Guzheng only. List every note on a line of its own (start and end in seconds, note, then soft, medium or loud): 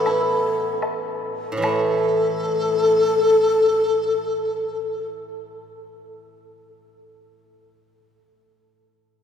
0.00 0.82 A2 medium
0.00 0.44 E3 medium
0.00 0.82 A3 soft
0.00 1.23 B3 medium
0.07 1.64 E4 soft
1.52 8.15 A2 medium
1.57 8.20 E3 medium
1.62 7.28 A3 medium